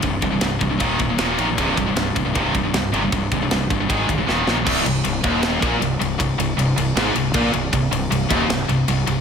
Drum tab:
CC |--------|--------|--------|x-------|
RD |xxxxxxxx|xxxxxxxx|xxxxxx--|-xxxxxxx|
SD |--o---o-|--o---o-|--o---oo|----o---|
BD |oo-ooo--|oo-ooo--|oo-ooo--|o--o-o--|

CC |--------|--------|
RD |xxxxxxxx|xxxxxxxx|
SD |----o---|----o---|
BD |o-----o-|o--o----|